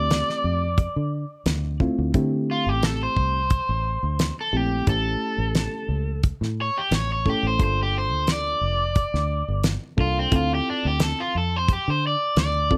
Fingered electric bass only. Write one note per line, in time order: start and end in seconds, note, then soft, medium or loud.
0.00 0.22 D2 medium
0.44 0.86 F2 medium
0.96 1.24 D3 medium
1.46 1.88 D2 medium
1.98 2.11 D2 medium
2.14 2.68 D3 medium
2.66 3.07 A1 medium
3.17 3.59 C2 medium
3.69 3.97 A1 medium
4.03 4.31 D2 medium
4.53 4.81 A#1 medium
4.87 5.15 A1 loud
5.38 5.66 A1 medium
5.89 6.31 C#2 medium
6.41 6.69 A2 medium
6.91 7.34 A1 medium
7.43 7.56 A1 medium
7.60 8.12 G1 loud
8.12 8.53 D2 medium
8.61 9.04 F1 medium
9.14 9.42 D2 medium
9.48 9.76 G1 medium
9.98 10.26 C2 medium
10.32 10.60 D2 loud
10.85 11.13 D2 medium
11.35 11.77 F2 medium
11.88 12.15 D3 medium
12.37 12.78 D2 loud